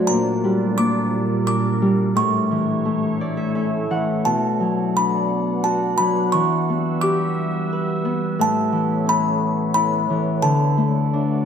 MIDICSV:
0, 0, Header, 1, 4, 480
1, 0, Start_track
1, 0, Tempo, 687285
1, 69, Time_signature, 3, 2, 24, 8
1, 1991, Tempo, 698487
1, 4391, Tempo, 684151
1, 7975, End_track
2, 0, Start_track
2, 0, Title_t, "Music box"
2, 0, Program_c, 0, 10
2, 50, Note_on_c, 0, 82, 89
2, 543, Note_on_c, 0, 86, 106
2, 549, Note_off_c, 0, 82, 0
2, 1019, Note_off_c, 0, 86, 0
2, 1027, Note_on_c, 0, 86, 95
2, 1514, Note_on_c, 0, 85, 84
2, 1522, Note_off_c, 0, 86, 0
2, 2451, Note_off_c, 0, 85, 0
2, 2954, Note_on_c, 0, 81, 70
2, 3445, Note_on_c, 0, 83, 77
2, 3450, Note_off_c, 0, 81, 0
2, 3907, Note_on_c, 0, 81, 72
2, 3934, Note_off_c, 0, 83, 0
2, 4139, Note_on_c, 0, 83, 82
2, 4156, Note_off_c, 0, 81, 0
2, 4377, Note_on_c, 0, 85, 96
2, 4390, Note_off_c, 0, 83, 0
2, 4862, Note_on_c, 0, 86, 88
2, 4879, Note_off_c, 0, 85, 0
2, 5318, Note_off_c, 0, 86, 0
2, 5844, Note_on_c, 0, 81, 94
2, 6318, Note_on_c, 0, 83, 99
2, 6325, Note_off_c, 0, 81, 0
2, 6768, Note_off_c, 0, 83, 0
2, 6776, Note_on_c, 0, 83, 97
2, 7254, Note_on_c, 0, 81, 82
2, 7269, Note_off_c, 0, 83, 0
2, 7975, Note_off_c, 0, 81, 0
2, 7975, End_track
3, 0, Start_track
3, 0, Title_t, "Ambient pad"
3, 0, Program_c, 1, 92
3, 0, Note_on_c, 1, 62, 74
3, 69, Note_on_c, 1, 46, 81
3, 73, Note_on_c, 1, 55, 70
3, 76, Note_on_c, 1, 70, 92
3, 1484, Note_off_c, 1, 62, 0
3, 1491, Note_off_c, 1, 46, 0
3, 1493, Note_off_c, 1, 55, 0
3, 1495, Note_off_c, 1, 70, 0
3, 1520, Note_on_c, 1, 73, 88
3, 1521, Note_on_c, 1, 57, 78
3, 1523, Note_on_c, 1, 64, 73
3, 2949, Note_off_c, 1, 57, 0
3, 2949, Note_off_c, 1, 73, 0
3, 2950, Note_off_c, 1, 64, 0
3, 2974, Note_on_c, 1, 74, 86
3, 2974, Note_on_c, 1, 78, 69
3, 2975, Note_on_c, 1, 59, 72
3, 4384, Note_off_c, 1, 74, 0
3, 4385, Note_off_c, 1, 59, 0
3, 4390, Note_on_c, 1, 76, 91
3, 4392, Note_on_c, 1, 55, 80
3, 5807, Note_off_c, 1, 78, 0
3, 5812, Note_off_c, 1, 76, 0
3, 5813, Note_off_c, 1, 55, 0
3, 5817, Note_on_c, 1, 59, 76
3, 5824, Note_on_c, 1, 69, 74
3, 5825, Note_on_c, 1, 73, 87
3, 7238, Note_off_c, 1, 59, 0
3, 7241, Note_off_c, 1, 69, 0
3, 7242, Note_off_c, 1, 73, 0
3, 7272, Note_on_c, 1, 74, 85
3, 7275, Note_on_c, 1, 57, 83
3, 7276, Note_on_c, 1, 66, 73
3, 7975, Note_off_c, 1, 57, 0
3, 7975, Note_off_c, 1, 66, 0
3, 7975, Note_off_c, 1, 74, 0
3, 7975, End_track
4, 0, Start_track
4, 0, Title_t, "Harp"
4, 0, Program_c, 2, 46
4, 0, Note_on_c, 2, 45, 58
4, 0, Note_on_c, 2, 54, 53
4, 0, Note_on_c, 2, 57, 49
4, 0, Note_on_c, 2, 66, 53
4, 65, Note_on_c, 2, 46, 63
4, 104, Note_off_c, 2, 45, 0
4, 104, Note_off_c, 2, 54, 0
4, 107, Note_off_c, 2, 57, 0
4, 308, Note_on_c, 2, 55, 50
4, 350, Note_off_c, 2, 66, 0
4, 541, Note_on_c, 2, 58, 50
4, 1029, Note_on_c, 2, 62, 54
4, 1263, Note_off_c, 2, 55, 0
4, 1271, Note_on_c, 2, 55, 50
4, 1505, Note_on_c, 2, 45, 61
4, 1541, Note_off_c, 2, 46, 0
4, 1541, Note_off_c, 2, 55, 0
4, 1547, Note_off_c, 2, 58, 0
4, 1753, Note_on_c, 2, 52, 49
4, 1992, Note_on_c, 2, 57, 49
4, 2238, Note_on_c, 2, 74, 58
4, 2348, Note_on_c, 2, 76, 62
4, 2469, Note_off_c, 2, 76, 0
4, 2472, Note_on_c, 2, 61, 50
4, 2472, Note_on_c, 2, 76, 62
4, 2514, Note_off_c, 2, 62, 0
4, 2514, Note_off_c, 2, 74, 0
4, 2708, Note_off_c, 2, 52, 0
4, 2715, Note_on_c, 2, 52, 44
4, 2718, Note_on_c, 2, 78, 60
4, 2955, Note_on_c, 2, 47, 60
4, 2991, Note_off_c, 2, 45, 0
4, 2991, Note_off_c, 2, 52, 0
4, 3193, Note_on_c, 2, 54, 48
4, 3439, Note_on_c, 2, 62, 47
4, 3480, Note_off_c, 2, 61, 0
4, 3656, Note_off_c, 2, 76, 0
4, 3823, Note_off_c, 2, 78, 0
4, 3910, Note_on_c, 2, 66, 50
4, 4140, Note_off_c, 2, 54, 0
4, 4149, Note_on_c, 2, 54, 48
4, 4279, Note_off_c, 2, 57, 0
4, 4389, Note_on_c, 2, 52, 60
4, 4425, Note_off_c, 2, 47, 0
4, 4425, Note_off_c, 2, 54, 0
4, 4639, Note_on_c, 2, 59, 50
4, 4872, Note_on_c, 2, 67, 51
4, 4914, Note_off_c, 2, 66, 0
4, 5361, Note_on_c, 2, 71, 53
4, 5383, Note_off_c, 2, 62, 0
4, 5585, Note_off_c, 2, 59, 0
4, 5588, Note_on_c, 2, 59, 53
4, 5829, Note_on_c, 2, 45, 65
4, 5862, Note_off_c, 2, 52, 0
4, 6061, Note_on_c, 2, 52, 49
4, 6301, Note_on_c, 2, 61, 51
4, 6523, Note_off_c, 2, 67, 0
4, 6781, Note_on_c, 2, 64, 56
4, 6798, Note_off_c, 2, 71, 0
4, 7016, Note_off_c, 2, 52, 0
4, 7025, Note_on_c, 2, 52, 52
4, 7254, Note_on_c, 2, 50, 66
4, 7292, Note_off_c, 2, 45, 0
4, 7292, Note_off_c, 2, 52, 0
4, 7296, Note_off_c, 2, 61, 0
4, 7498, Note_on_c, 2, 57, 50
4, 7751, Note_on_c, 2, 62, 48
4, 7767, Note_off_c, 2, 59, 0
4, 7975, Note_off_c, 2, 50, 0
4, 7975, Note_off_c, 2, 57, 0
4, 7975, Note_off_c, 2, 62, 0
4, 7975, Note_off_c, 2, 64, 0
4, 7975, End_track
0, 0, End_of_file